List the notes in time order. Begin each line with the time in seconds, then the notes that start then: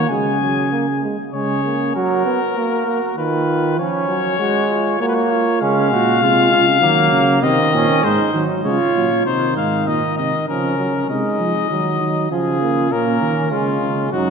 Already playing: A#3
0.09 C#3 G#3 G#4 G#5
0.41 F#3
0.72 A#3
1.03 G#3
1.33 C#3 G#3 G#4 C#5
1.65 A#3
1.95 F#3 F#4 A#4
2.25 B3
2.56 A#3 F#4
2.87 A#3
3.17 D#3 F4 B4
3.78 F3 C#4 C#5
4.09 F#3
4.39 G#3 F#4
4.70 F4
5.01 A#3 F#4 C#5
5.08 B4
5.15 C#5
5.31 F4
5.61 C#3 G#3 C#4 F5
5.91 A#2 F#4
6.21 C3 G#3 F4
6.51 C#3 F4
6.81 D#3 F#3 A#3
7.12 C#3
7.42 C3 D#3 C4 D#5
7.73 A#2 C#4
8.02 G#2 G#3 D#4 C5
8.34 D#3 F#3
8.65 C#3 G#3 F4 C#5
8.95 A#2 F#3
9.25 C3 D#3 D#4 C5
9.56 G#2 F5
9.87 A#2 D#5
10.17 C3 D#5
10.48 C#3 F3 C#4 A#4
10.78 F#3
11.08 C3 G#3 D#4 D#5
11.39 F3
11.70 D#3 F#3 D#4
12.01 D#3
12.30 C#3 F3 F4 G#4
12.61 A#3
12.92 A#2 A#3 C#4 A#4
13.21 D#3
13.52 C#3 G#3 F4
13.82 C#3
14.12 F#2 F#3 D#4 F#4